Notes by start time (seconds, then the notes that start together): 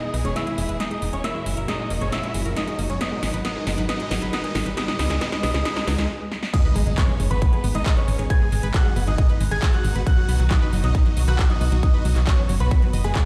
Already playing: B2 E3 G#3 D#4 E4 G#4 D#5 D#6, riser
0.03 G#3
0.14 B1 B3, open hi-hat
0.25 E1 G#3 C#4 C#5 C#6, closed hi-hat
0.36 B3 E4 E5 E6, snare, closed hi-hat
0.47 G#3, closed hi-hat
0.58 E1 G#3, open hi-hat
0.69 E1 B4, closed hi-hat
0.80 G#3 D#4 D#5 D#6, snare, closed hi-hat
0.91 G#3, closed hi-hat
1.02 E1 B3, open hi-hat
1.13 E1 G#3 C#4 C#5 C#6, closed hi-hat
1.24 A#2 C#3 F#3 A#3 C#4 E4 F#4 E5 E6, snare, closed hi-hat
1.35 G#3
1.46 F#1 G#3, open hi-hat
1.57 F#1 A#4, closed hi-hat
1.68 G#3 D#4 D#5 D#6, snare, closed hi-hat
1.79 G#3
1.90 E1 A#3, open hi-hat
2.01 F#1 G#3 C#4 C#5 C#6, closed hi-hat
2.12 A#3 E4 E5 E6, snare, closed hi-hat
2.23 G#3, closed hi-hat
2.34 F#1 G#3, open hi-hat
2.45 F#1 A#4, closed hi-hat
2.56 G#3 D#4 D#5 D#6, snare, closed hi-hat
2.68 G#3, closed hi-hat
2.79 F#1 A#3, open hi-hat
2.90 F#1 G#3 C#4 C#5 C#6, closed hi-hat
3.01 G#2 B2 D#3 B3 D#4 D#5 D#6, snare, closed hi-hat
3.12 G#3
3.23 G#1 G#3, snare, open hi-hat
3.34 G#1 B4, closed hi-hat
3.45 B3 D#4 D#5 D#6, snare, closed hi-hat
3.56 G#3
3.67 F#1 G#3, snare, open hi-hat
3.78 G#1 B4, closed hi-hat
3.89 B3 D#4 D#5 D#6, snare, closed hi-hat
4.00 G#3, closed hi-hat
4.11 G#1 G#3, snare, open hi-hat
4.22 G#1 B4, closed hi-hat
4.33 B3 D#4 D#5 D#6, snare, closed hi-hat
4.44 G#3, closed hi-hat
4.55 G#1 G#3, snare, open hi-hat
4.66 G#1 B4, closed hi-hat
4.77 C#3 B3 C#4 D#4 D#5 D#6, snare, closed hi-hat
4.88 G#3, snare
4.99 C#2 B3 D#4 D#5 D#6, snare, open hi-hat
5.10 C#2 G#3, snare, closed hi-hat
5.21 B3 D#4 D#5 D#6, snare, closed hi-hat
5.32 G#3, snare, closed hi-hat
5.43 B1 B3 D#4 D#5 D#6, snare, open hi-hat
5.54 C#2 G#3, snare, closed hi-hat
5.65 B3 D#4 D#5 D#6, snare, closed hi-hat
5.76 G#3, snare, closed hi-hat
5.87 C#2 B3 D#4 D#5 D#6, snare, open hi-hat
5.98 C#2 G#3, snare, closed hi-hat
6.32 snare
6.43 snare
6.53 G#2 B2 D#3 G#3 B3 D#4 D#5 D#6, kick, closed hi-hat, crash, impact
6.65 B4
6.76 G#1 G#3, open hi-hat
6.87 G#1 G#3, closed hi-hat
6.98 B3 C#4 C#5 C#6, kick, clap, closed hi-hat
7.09 G#3
7.20 F#1 G#3, open hi-hat
7.31 G#1 B3 B4 B5, closed hi-hat
7.42 G#3, kick, closed hi-hat
7.53 G#3, closed hi-hat
7.64 G#1 B3, open hi-hat
7.75 G#1 G#3 D#4 D#5 D#6, closed hi-hat
7.86 G#3, kick, clap, closed hi-hat
7.97 C#4 B4 C#5 C#6, closed hi-hat
8.08 G#1 G#3, open hi-hat
8.19 G#1 G#3, closed hi-hat
8.30 B3 G#4 G#5 G#6, kick, closed hi-hat
8.41 G#3
8.52 G#1 G#3, open hi-hat
8.63 G#1 B4, closed hi-hat
8.74 G#3 F#4 F#5 F#6, kick, clap, closed hi-hat
8.85 G#3
8.96 F#1 B3, open hi-hat
9.07 G#1 G#3 D#4 D#5 D#6, closed hi-hat
9.18 G#3, kick, closed hi-hat
9.29 B4, closed hi-hat
9.40 G#1 G#3, open hi-hat
9.51 G#1 G#3 G#4 G#5 G#6, closed hi-hat
9.62 B3, kick, clap, closed hi-hat
9.73 G#3 F#4 F#5 F#6, closed hi-hat
9.84 G#1 G#3, open hi-hat
9.96 G#1 B4, closed hi-hat
10.06 F#3 F#4 F#5 F#6, kick, closed hi-hat
10.18 F#3
10.29 B1 B3, open hi-hat
10.40 B1 F#3, closed hi-hat
10.51 F#3 D#4 D#5 D#6, kick, clap, closed hi-hat
10.62 B4
10.73 F#1 F#3, open hi-hat
10.84 B1 F#3 D#4 D#5 D#6, closed hi-hat
10.95 B3, kick, closed hi-hat
11.06 F#3, closed hi-hat
11.17 B1 F#3, open hi-hat
11.28 B1 F#4 B4 F#5 F#6, closed hi-hat
11.39 F#3, kick, clap, closed hi-hat
11.50 F#3 D#4 D#5 D#6, closed hi-hat
11.61 B1 B3, open hi-hat
11.72 B1 F#3, closed hi-hat
11.83 F#3 D#4 D#5 D#6, kick, closed hi-hat
11.94 B4
12.05 B1 F#3, open hi-hat
12.16 B1 F#3, clap, closed hi-hat
12.27 B3 C#4 C#5 C#6, kick, clap, closed hi-hat
12.38 F#3
12.49 F#1 F#3, open hi-hat
12.60 B1 B3 B4 B5, closed hi-hat
12.71 F#3, kick, closed hi-hat
12.82 F#3, closed hi-hat
12.93 F#1 D#5, open hi-hat
13.04 F#1 G#3 G#4 B4 G#5, closed hi-hat
13.15 F#3, kick, clap, closed hi-hat